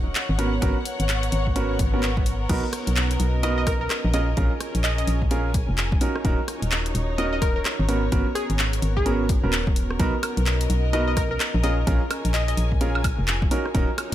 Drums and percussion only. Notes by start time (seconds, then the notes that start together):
0.15 clap, closed hi-hat
0.39 open hi-hat
0.62 kick, closed hi-hat
0.85 open hi-hat
1.00 closed hi-hat
1.09 clap, closed hi-hat
1.23 closed hi-hat
1.32 open hi-hat
1.47 kick
1.56 closed hi-hat
1.79 kick, open hi-hat
2.03 clap, closed hi-hat
2.17 kick
2.26 open hi-hat
2.50 kick, closed hi-hat, crash
2.73 cross-stick, open hi-hat
2.87 closed hi-hat
2.96 clap, closed hi-hat
3.11 closed hi-hat
3.20 open hi-hat
3.43 closed hi-hat
3.67 kick, cross-stick, open hi-hat
3.90 cross-stick, clap, closed hi-hat
4.14 open hi-hat
4.37 kick, closed hi-hat
4.61 cross-stick, open hi-hat
4.75 closed hi-hat
4.84 clap, closed hi-hat
4.98 closed hi-hat
5.07 open hi-hat
5.22 kick
5.31 closed hi-hat
5.54 kick, open hi-hat
5.78 clap, closed hi-hat
5.92 kick
6.01 open hi-hat
6.16 cross-stick
6.25 kick, closed hi-hat
6.48 cross-stick, open hi-hat
6.62 closed hi-hat
6.72 clap, closed hi-hat
6.86 closed hi-hat
6.95 open hi-hat
7.18 closed hi-hat
7.42 kick, cross-stick, open hi-hat
7.65 cross-stick, clap, closed hi-hat
7.89 open hi-hat
8.12 kick, closed hi-hat
8.36 cross-stick, open hi-hat
8.50 closed hi-hat
8.59 clap, closed hi-hat
8.73 closed hi-hat
8.82 open hi-hat
8.97 kick
9.06 closed hi-hat
9.29 kick, open hi-hat
9.53 clap, closed hi-hat
9.67 kick
9.76 open hi-hat
9.91 cross-stick
10.00 kick, closed hi-hat
10.23 cross-stick, open hi-hat, high woodblock
10.37 closed hi-hat
10.46 clap, closed hi-hat
10.61 closed hi-hat
10.70 open hi-hat
10.93 closed hi-hat
11.17 kick, cross-stick, open hi-hat
11.40 cross-stick, clap, closed hi-hat
11.64 open hi-hat
11.87 kick, closed hi-hat
12.11 cross-stick, open hi-hat, high woodblock
12.25 closed hi-hat
12.34 clap, closed hi-hat
12.48 closed hi-hat
12.57 open hi-hat
12.72 kick
12.81 closed hi-hat
12.95 high woodblock
13.04 kick, open hi-hat, high woodblock
13.28 clap, closed hi-hat
13.42 kick
13.51 open hi-hat
13.66 cross-stick
13.75 kick, closed hi-hat
13.98 cross-stick, open hi-hat, high woodblock